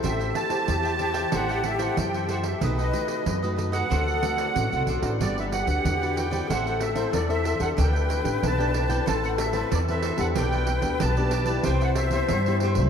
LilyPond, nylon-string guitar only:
\new Staff \with { instrumentName = "Nylon-string guitar" } { \time 4/4 \key a \dorian \tempo 4 = 93 << { <e' g' c''>8. <e' g' c''>8. <e' g' c''>8 <e' g' c''>8. <e' g' c''>8. <e' g' c''>16 r16 | <a dis' fis'>16 r16 <a dis' fis'>8 r16 <a dis' fis'>8. <a c' fis'>8 <a c' fis'>8 r16 <a c' fis'>8 <d' fis' b'>16~ | \key g \major <d' fis' b'>8 r16 <d' fis' b'>8 <d' fis' b'>8 <c' e' c''>4 <c' e' c''>8 <c' e' c''>8 <d' g' a'>16~ | <d' g' a'>8. <d' g' a'>8 <d' g' a'>8 <c' e' b'>4 <c' e' b'>8 <c' e' b'>8 <b d' g'>16~ |
<b d' g'>8. <b d' g'>8 <b d' g'>8 <e' g'>4 <b e' g'>8 <b e' g'>8 <fis a d'>16 | } \\ { a4 e4 a4 e4 | b,4 fis4 d4 a,4 | g4 d4 a4 e4 | d4 a,4 a4 e4 |
b,4 b,4 c4 g,4 | } >> }